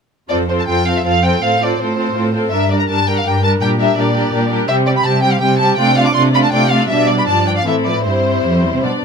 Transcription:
0.29 F2 C4 F4 A4 C5 D5
0.48 C4 F4 A4 C5
0.59 A5
0.67 F2 C4 F4 A4 C5 G5
0.86 C4 F4 A4 C5 F5
0.97 E5
1.05 F2 C4 F4 A4 C5 F5
1.24 C4 F4 A4 C5 G5
1.42 A2 C4 F4 A4 C5 F5
1.62 C4 F4 A4 C5 D5
1.74 D5
1.79 A2 C4 F4 A4 C5
1.97 C4 F4 A4 C5
2.16 A2 C4 F4 A4 C5
2.34 C4 F4 A4 C5
2.50 G2 G3 D4 E5
2.54 A#4
2.71 G3 D4 A#4 D5
2.79 A#5
2.89 G2 G3 D4 A#4 A5
3.07 G3 D4 A#4 G5
3.18 F5
3.26 G2 G3 D4 A#4 G5
3.43 G3 D4 A#4 A5
3.61 A#2 G3 D4 G4 A#4 G5
3.80 G3 D4 G4 A#4 E5
3.98 A#2 G3 D4 G4 A#4 D5
4.15 G3 D4 G4 A#4
4.33 A#2 G3 D4 G4 A#4
4.50 G3 D4 G4 A#4
4.68 C3 G3 C4 G4 E5
4.87 G3 C4 G4 D5
4.97 B5
5.05 C3 G3 C4 G4 A5
5.22 G3 C4 G4 G5
5.32 F5
5.41 C3 G3 C4 G4 G5
5.59 G3 C4 G4 A5
5.77 C3 A3 D4 F4 D5 G5
5.95 A3 D4 F4 D5 F5
6.06 D6
6.14 C3 A3 D4 F4 D5 C6
6.33 A3 D4 F4 D5 B5
6.43 A5
6.52 C3 A3 D4 F4 D5 G5
6.69 A3 D4 F4 D5 F5
6.88 B2 G3 D4 D5 E5
7.08 D5
7.18 B5
7.27 G2 F3 A5
7.47 G5
7.57 F5
7.66 A2 E3 C4 E4 A4 E5
7.85 F3 B4 D5
8.04 G2 G3 C4 E4 C5
8.44 F2
8.64 E2
8.74 C3
8.83 B2 G3 B3 D4 D5

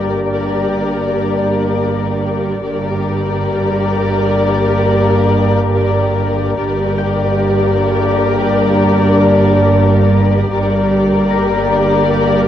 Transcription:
Already playing: G1 G2 A#3 D4 G4 A#4 D5
2.63 G1 G2 A#3 D4 G4 A#4 D5
6.57 G1 G2 A#3 D4 G4 A#4 D5
6.98 G5
10.52 G1 G2 A#3 G4 A#4 D5
11.30 D#4 A#4

